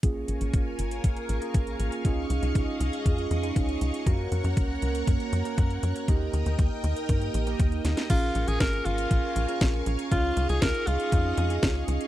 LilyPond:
<<
  \new Staff \with { instrumentName = "String machine" } { \time 4/4 \key bes \minor \tempo 4 = 119 << { des'''1~ | des'''1~ | des'''1 | ees'''1 |
des'''1~ | des'''1 | } \\ { <bes' f'' aes''>1 | <aes' ees''>1 | <bes' des'' ges''>1 | <bes' ees'' g''>1 |
<bes' f'' aes''>1 | <aes' ees''>1 | } >> }
  \new Staff \with { instrumentName = "Alto saxophone" } { \time 4/4 \key bes \minor r1 | r1 | r1 | r1 |
f'8. aes'16 bes'8 f'2 r8 | f'8. aes'16 bes'8 f'2 r8 | }
  \new Staff \with { instrumentName = "Analog polysynth" } { \time 4/4 \key bes \minor <bes des' f' aes'>2~ <bes des' f' aes'>8. <bes des' f' aes'>4~ <bes des' f' aes'>16 | <des' ees' f' aes'>2~ <des' ees' f' aes'>8. <des' ees' f' aes'>4~ <des' ees' f' aes'>16 | <bes des' ges' bes'>2~ <bes des' ges' bes'>8. <bes des' ges' bes'>4~ <bes des' ges' bes'>16 | <bes ees' g' bes'>2~ <bes ees' g' bes'>8. <bes ees' g' bes'>4~ <bes ees' g' bes'>16 |
<des' f' aes' bes'>2~ <des' f' aes' bes'>8. <des' f' aes' bes'>4~ <des' f' aes' bes'>16 | <des' ees' f' aes'>2~ <des' ees' f' aes'>8. <des' ees' f' aes'>4~ <des' ees' f' aes'>16 | }
  \new Staff \with { instrumentName = "Analog synth bass" } { \clef bass \time 4/4 \key bes \minor bes,,8 bes,,16 bes,,16 aes,,8 aes,,8 bes,,16 r16 bes,,16 r16 bes,,8 bes,,16 r16 | des,8 des,16 des,16 des,16 r16 des,16 r16 f,8 f,8 des,8 des,16 r16 | ges,8 ges,16 ges,16 des,8 des,8 ges,16 r16 ges,16 r16 ges,8 ges,16 r16 | ees,8 ees,16 ees,16 ees,16 r16 ees,16 r16 g,8 bes,,8 ees,8 ees,16 r16 |
bes,,8 bes,,16 bes,,16 aes,,8 aes,,8 bes,,16 r16 bes,,16 r16 bes,,8 bes,,16 r16 | des,8 des,16 des,16 des,16 r16 des,16 r16 f,8 f,8 des,8 des,16 r16 | }
  \new DrumStaff \with { instrumentName = "Drums" } \drummode { \time 4/4 <hh bd>8 hh16 hh16 <hh bd>8 hh16 hh16 <hh bd>16 hh16 hh16 hh16 <hh bd>16 hh16 hh16 hh16 | <hh bd>8 hh16 hh16 <hh bd>8 hh16 hh16 <hh bd>16 hh16 hh16 hh16 <hh bd>16 hh16 hh16 hh16 | <hh bd>8 hh16 hh16 <hh bd>8 hh16 hh16 <hh bd>16 hh16 hh16 hh16 <hh bd>16 hh16 hh16 hh16 | <hh bd>8 hh16 hh16 <hh bd>8 hh16 hh16 <hh bd>16 hh16 hh16 hh16 <hh bd>16 hh16 <hh sn>16 <hh sn>16 |
<cymc hh bd>8 hh16 hh16 <hh bd sn>16 hh16 hh16 hh16 <hh bd>8 hh16 hh16 <hh bd sn>8 hh16 hh16 | <hh bd>8 hh16 hh16 <hh bd sn>16 hh16 hh16 hh16 <hh bd>8 hh16 hh16 <hh bd sn>8 hh16 hh16 | }
>>